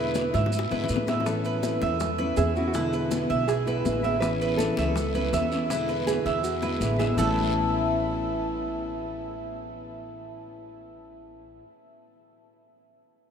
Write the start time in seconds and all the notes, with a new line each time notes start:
Already playing: E2 B2 D3 G#3 B3 E4 B4
0.15 high bongo, high conga, short guiro, maracas
0.34 G#2 E5, high bongo, high conga, short guiro, maracas
0.46 high bongo
0.52 muted steel-string acoustic guitar stroke, high conga, long guiro, maracas
0.59 high bongo
0.70 G#2 D3 G#3 B3 E4 B4, low bongo, high conga, maracas
0.84 low bongo
0.89 A2 D3 G#3 B3 E4, high conga, short guiro, maracas
0.96 low bongo
1.07 D3 G#3 B3 E4 E5, low bongo, high conga, short guiro, maracas
1.20 low bongo
1.25 E3 B3 C#4 E4 A4, high bongo, high conga, maracas
1.44 B4, high conga, maracas
1.63 high bongo, high conga, maracas
1.82 E2 E5, high bongo, high conga, maracas
2.00 muted steel-string acoustic guitar stroke, high bongo, high conga, low conga, maracas
2.18 B3 C#4 E4 B4, high bongo, high conga, low conga, maracas
2.37 E2 E3 B3 C#4 E4 G#4 E5, high bongo, low bongo, high conga, maracas
2.56 B3 C#4 E4 F#4, high bongo, maracas
2.67 F#4
2.74 B2 D3 G#3 B3 E4, high bongo, high conga, maracas
2.93 B4, high conga, maracas
3.11 high bongo, high conga, maracas
3.30 B1 E5, high bongo, high conga, maracas
3.48 G#4, muted steel-string acoustic guitar stroke, high bongo, high conga, maracas
3.66 D3 G#3 B3 E4 B4, high bongo, high conga, maracas
3.85 A1 D3 G#3 B3 E4, high bongo, low bongo, high conga, maracas
4.02 D3 G#3 B3 E4 E5, high bongo, high conga, maracas
4.21 E3 B3 C#4 E4 B4, high bongo, high conga, long guiro, maracas
4.40 B4, high conga, maracas
4.58 A4, high bongo, high conga, short guiro, maracas
4.77 C#2 E5, high bongo, high conga, short guiro, maracas
4.95 muted steel-string acoustic guitar stroke, high bongo, high conga, low conga, long guiro, maracas
5.14 B3 C#4 E4 B4, high bongo, high conga, low conga, maracas
5.31 E2 E3 B3 C#4 E4 E5, high bongo, low bongo, high conga, short guiro, maracas
5.51 B3 C#4 E4, high bongo, short guiro, maracas
5.69 B2 D3 G#3 B3 E4, high bongo, high conga, long guiro, maracas
5.89 B4, high conga, maracas
6.07 G#4, high bongo, high conga, short guiro, maracas
6.26 E2 E5, high conga, short guiro, maracas
6.43 F#4, muted steel-string acoustic guitar stroke, high conga, long guiro, maracas
6.62 D3 G#3 B3 E4 B4, low bongo, high conga, maracas
6.80 A1 D3 G#3 B3 E4, high conga, short guiro, maracas
6.99 D3 G#3 B3 E4 G#4 E5, low bongo, high conga, short guiro, maracas
7.17 A1 A2 E3 A3 B3 C#4 E4 A4, low bongo, low conga, long guiro, maracas